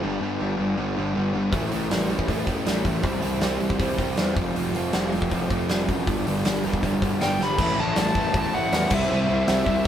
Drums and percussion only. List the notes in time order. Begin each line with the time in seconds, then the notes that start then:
1.52 kick, open hi-hat
1.71 open hi-hat
1.91 snare, open hi-hat
2.10 open hi-hat
2.19 kick
2.28 kick, open hi-hat
2.47 kick, open hi-hat
2.66 snare, open hi-hat
2.85 kick, open hi-hat
3.03 kick, open hi-hat
3.22 open hi-hat
3.41 snare, open hi-hat
3.60 open hi-hat
3.70 kick
3.79 kick, open hi-hat
3.98 kick, open hi-hat
4.17 snare, open hi-hat
4.36 kick, open hi-hat
4.56 open hi-hat
4.75 open hi-hat
4.93 snare, open hi-hat
5.12 open hi-hat
5.22 kick
5.31 kick, open hi-hat
5.50 kick, open hi-hat
5.69 snare, open hi-hat
5.88 kick, open hi-hat
6.07 kick, open hi-hat
6.27 open hi-hat
6.45 snare, open hi-hat
6.63 open hi-hat
6.73 kick
6.83 kick, open hi-hat
7.02 kick, open hi-hat
7.21 snare, open hi-hat
7.41 snare
7.58 kick, crash
7.96 snare, open hi-hat
8.15 kick
8.34 kick, open hi-hat
8.72 snare, open hi-hat
8.90 kick, crash
9.47 snare, open hi-hat
9.66 kick